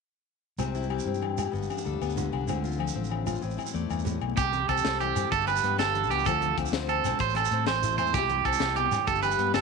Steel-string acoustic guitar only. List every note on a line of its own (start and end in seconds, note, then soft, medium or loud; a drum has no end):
0.58 1.22 C3 medium
0.58 1.06 C4 medium
0.75 1.37 E4 soft
0.90 1.51 G3 medium
0.90 1.85 G4 medium
1.07 1.52 C4 soft
1.21 1.50 G2 soft
1.38 1.52 E4 soft
1.52 2.47 G2 medium
1.52 2.00 B3 medium
1.70 2.31 D4 soft
1.85 2.46 G3 medium
1.85 2.47 A4 medium
2.01 2.47 B3 medium
2.16 2.46 D3 medium
2.32 2.63 D4 soft
2.47 3.41 D3 medium
2.47 2.94 C4 medium
2.64 3.25 F4 medium
2.78 3.42 F3 medium
2.78 3.41 A4 soft
2.95 3.41 C4 medium
3.09 3.40 A2 medium
3.27 3.41 F4 soft
3.41 3.89 A2 medium
3.41 4.35 C4 soft
3.57 4.35 E4 soft
3.74 4.35 A3 medium
3.74 4.36 D5 medium
3.89 4.05 G2 medium
4.05 4.21 A2 medium
4.22 4.38 B2 medium
4.37 5.32 C3 medium
4.52 5.30 G3 medium
4.69 5.16 C4 medium
4.86 5.30 A4 medium
5.01 5.31 E4 medium
5.18 5.31 C4 medium
5.32 6.26 G2 medium
5.47 6.24 G3 medium
5.64 6.10 B3 medium
5.79 6.24 A4 medium
5.95 6.26 D4 medium
6.11 6.25 B3 medium
6.26 7.18 D3 medium
6.26 6.40 F3 medium
6.26 6.58 C4 medium
6.26 6.90 F4 medium
6.26 6.74 A4 medium
6.41 7.20 F3 medium
6.59 7.05 C4 medium
6.74 7.19 C5 medium
7.06 7.19 C4 medium
7.20 8.12 A2 medium
7.36 8.12 A3 medium
7.53 7.99 C4 medium
7.68 8.13 A4 medium
7.84 8.13 E4 medium
8.00 8.13 C4 medium
8.16 8.60 C3 medium
8.16 8.29 G3 medium
8.16 9.07 E4 medium
8.16 9.54 G4 medium
8.16 muted steel-string acoustic guitar stroke medium
8.31 9.06 G3 medium
8.46 9.06 C4 medium
8.61 8.77 C3 medium
8.76 8.91 B2 medium
8.92 9.07 A2 medium
9.08 9.61 G2 medium
9.24 9.61 G3 medium
9.39 9.61 B3 medium